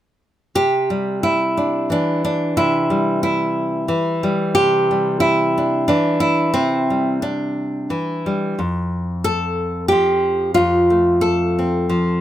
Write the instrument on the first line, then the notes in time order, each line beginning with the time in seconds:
nylon-string guitar
0.55 C3 G4
0.90 G3
1.23 E4
1.57 D4
1.90 E3 D4
2.25 D4
2.57 C3 E4
2.90 G3
3.23 E4
3.88 E3
4.23 G3
4.55 C3 G4
4.91 G3
5.20 E4
5.58 D4
5.88 E3 D4
6.20 E4
6.54 C3 C4
6.90 G3
7.22 D4
7.90 E3
8.26 G3
8.59 F2
9.24 A4
9.88 F3 G4
10.54 F2 F4
10.90 A3
11.21 A4
11.59 C4
11.89 F3